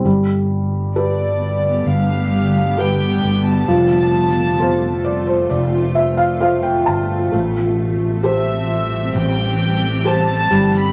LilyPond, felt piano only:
\new Staff \with { instrumentName = "Felt piano" } { \time 4/4 \key a \minor \tempo 4 = 66 << { r1 | r4. d''16 c''16 d''8 e''16 f''16 f''16 g''16 a''8 | r1 | } \\ { g4 <g' a' b'>4 r4 <g' a' b'>4 | f4 <f' a' c''>4 r4 <f' a' c''>4 | a4 <g' a' c''>4 r4 <g' a' c''>8 g8 | } >> }